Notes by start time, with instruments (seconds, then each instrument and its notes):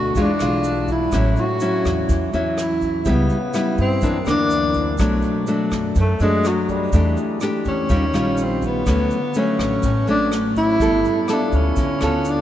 Already playing: upright bass D2, nylon-string guitar B2 A3 D4 F#4, tenor saxophone F#4
0.15 upright bass E2, nylon-string guitar E3 G#3 D4 F4, kick, closed hi-hat, shaker
0.21 tenor saxophone D4
0.39 upright bass B1, nylon-string guitar G#3 D4 F4, cross-stick, closed hi-hat, shaker
0.64 closed hi-hat, shaker
0.88 tenor saxophone E4, kick, closed hi-hat, shaker
1.12 upright bass A1, nylon-string guitar A2 F#3 C#4 E4, kick, cross-stick, closed hi-hat, shaker
1.36 tenor saxophone F#4, closed hi-hat, shaker
1.60 nylon-string guitar F#3 C#4 E4, closed hi-hat, shaker
1.85 upright bass E2, kick, cross-stick, closed hi-hat, shaker
2.09 upright bass E2, nylon-string guitar E3, kick, closed hi-hat, shaker
2.33 upright bass E2, nylon-string guitar F#3 C#4 E4, closed hi-hat, shaker
2.58 cross-stick, closed hi-hat, shaker
2.62 tenor saxophone E4
2.82 kick, closed hi-hat, shaker
3.05 upright bass C#2, nylon-string guitar C#3 G3 B3 E4, kick, closed hi-hat, shaker
3.10 tenor saxophone B3
3.29 closed hi-hat, shaker
3.53 nylon-string guitar G3 B3 E4, cross-stick, closed hi-hat, shaker
3.78 upright bass G2, tenor saxophone C4, kick, closed hi-hat, shaker
4.01 nylon-string guitar F#2 E3 A#3 D4, upright bass F#2, kick, closed hi-hat, shaker
4.25 upright bass D2, nylon-string guitar E3 A#3 D4, cross-stick, closed hi-hat, shaker
4.30 tenor saxophone D4
4.50 closed hi-hat, shaker
4.74 kick, closed hi-hat, shaker
4.98 upright bass B1, nylon-string guitar B2 F#3 A3 D4, kick, cross-stick, closed hi-hat, shaker
5.22 closed hi-hat, shaker
5.47 nylon-string guitar F#3 A3 D4, closed hi-hat, shaker
5.71 upright bass F#2, kick, cross-stick, closed hi-hat, shaker
5.95 upright bass F#2, nylon-string guitar F#2, kick, closed hi-hat, shaker
6.00 tenor saxophone A3
6.20 upright bass F#2, nylon-string guitar F#3 A3 D4, tenor saxophone G#3, closed hi-hat, shaker
6.44 tenor saxophone F#3, cross-stick, closed hi-hat, shaker
6.69 tenor saxophone G3, kick, closed hi-hat, shaker
6.92 upright bass E2, nylon-string guitar E3 A3 D4 G4, kick, closed hi-hat, shaker
7.17 closed hi-hat, shaker
7.40 nylon-string guitar A3 D4 G4, cross-stick, closed hi-hat, shaker
7.65 upright bass E2, tenor saxophone C#4, kick, closed hi-hat, shaker
7.89 upright bass D#2, nylon-string guitar D#3 G3 C#4 F4, kick, closed hi-hat, shaker
8.13 upright bass A#1, nylon-string guitar G3 C#4 F4, cross-stick, closed hi-hat, shaker
8.37 closed hi-hat, shaker
8.43 tenor saxophone C4
8.62 tenor saxophone B3, kick, closed hi-hat, shaker
8.86 upright bass D2, nylon-string guitar D3 F#3 A3 C#4, kick, cross-stick, closed hi-hat, shaker
9.10 closed hi-hat, shaker
9.34 nylon-string guitar F#3 A3 C#4, closed hi-hat, shaker
9.39 tenor saxophone C#4
9.59 upright bass A1, kick, cross-stick, shaker
9.83 upright bass A1, nylon-string guitar A2, kick, closed hi-hat, shaker
10.07 upright bass A1, nylon-string guitar F#3 A3 C#4, tenor saxophone D4, closed hi-hat, shaker
10.32 cross-stick, closed hi-hat, shaker
10.56 tenor saxophone E4, kick, closed hi-hat, shaker
10.80 upright bass G1, nylon-string guitar G3 B3 A4, kick, closed hi-hat, shaker
11.04 closed hi-hat, shaker
11.28 nylon-string guitar B3 F4 A4, cross-stick, closed hi-hat, shaker
11.32 tenor saxophone D4
11.52 upright bass D2, tenor saxophone C#4, kick, closed hi-hat, shaker
11.76 upright bass D2, nylon-string guitar D3, kick, closed hi-hat, shaker
12.01 upright bass D2, nylon-string guitar B3 F4 A4, cross-stick, closed hi-hat, shaker
12.25 closed hi-hat, shaker
12.30 tenor saxophone D4